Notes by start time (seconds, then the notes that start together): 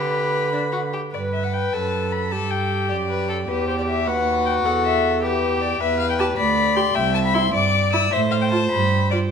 Already playing: D3 G4 B4 B5
0.53 D4
0.72 F#4
0.93 G4
1.13 G2 B4 D5
1.33 E5
1.44 F#5
1.53 G5
1.73 F#2 A4 A5
2.12 B5
2.31 G2 G4 A4 A5
2.51 G5
2.89 F#2 G4 D5
3.09 B4
3.29 A4
3.48 E2 G4 B4
3.68 C5
3.78 D5
3.88 E5
4.07 D#2 F#4 B4 F#5
4.46 G5
4.65 E2 A4 F#5
4.85 E5
5.23 G4 B4
5.62 D5
5.81 E2 B4 E5
5.99 F5
6.10 G5
6.19 G4 A5
6.38 D2 D5 B5
6.76 G4 C6
6.95 C2 E5 G5
7.14 A5
7.25 B5
7.34 E4 C6
7.53 G2 D5 D6
7.93 E4 E6
8.12 A2 C5 E5
8.31 F5
8.41 G5
8.51 F4 A5
8.71 G2 B5
9.11 F4 D5